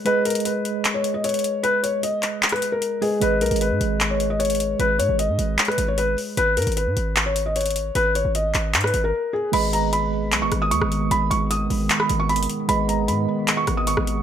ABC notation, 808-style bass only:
X:1
M:4/4
L:1/16
Q:1/4=152
K:G#m
V:1 name="808-style bass" clef=bass
z16 | z16 | G,,,2 B,,, G,,,2 G,, G,,,8- G,,,2 | G,,,2 G,, G,,,2 G,, G,,,2 z2 G,,,4 z2 |
G,,,2 G,, G,,,2 G,, G,,,8- G,,,2 | G,,,3 G,,,3 G,,,2 G,,2 G,,,2 z4 | G,,,8 B,,, G,,, G,,,2 D,, G,,,3 | G,,,2 G,,,4 G,,,2 z2 G,,,4 z2 |
G,,,4 G,,2 z4 G,,,3 G,,,3 |]